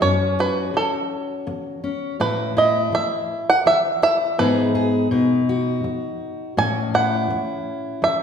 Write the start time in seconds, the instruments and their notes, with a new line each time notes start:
0.01 steel-string acoustic guitar F#2 C#4, five-string banjo C#5
0.39 steel-string acoustic guitar F#4, five-string banjo B4
0.74 five-string banjo A4, muted steel-string acoustic guitar stroke
1.47 muted steel-string acoustic guitar stroke
1.84 steel-string acoustic guitar C#4
2.20 steel-string acoustic guitar A2 E4, five-string banjo B4
2.57 steel-string acoustic guitar E4, five-string banjo D#5
2.92 five-string banjo E5, muted steel-string acoustic guitar stroke
3.50 five-string banjo F#5
3.66 five-string banjo E5, muted steel-string acoustic guitar stroke
4.02 steel-string acoustic guitar E4, five-string banjo E5
4.38 steel-string acoustic guitar G#2 B3 D#4 G#4, five-string banjo B4
4.75 steel-string acoustic guitar G#4
5.11 steel-string acoustic guitar B2 D#4
5.49 steel-string acoustic guitar F#4
5.84 muted steel-string acoustic guitar stroke
6.57 steel-string acoustic guitar A2 C#4, five-string banjo G#5
6.94 steel-string acoustic guitar E4, five-string banjo F#5
7.30 muted steel-string acoustic guitar stroke
8.02 five-string banjo E5, muted steel-string acoustic guitar stroke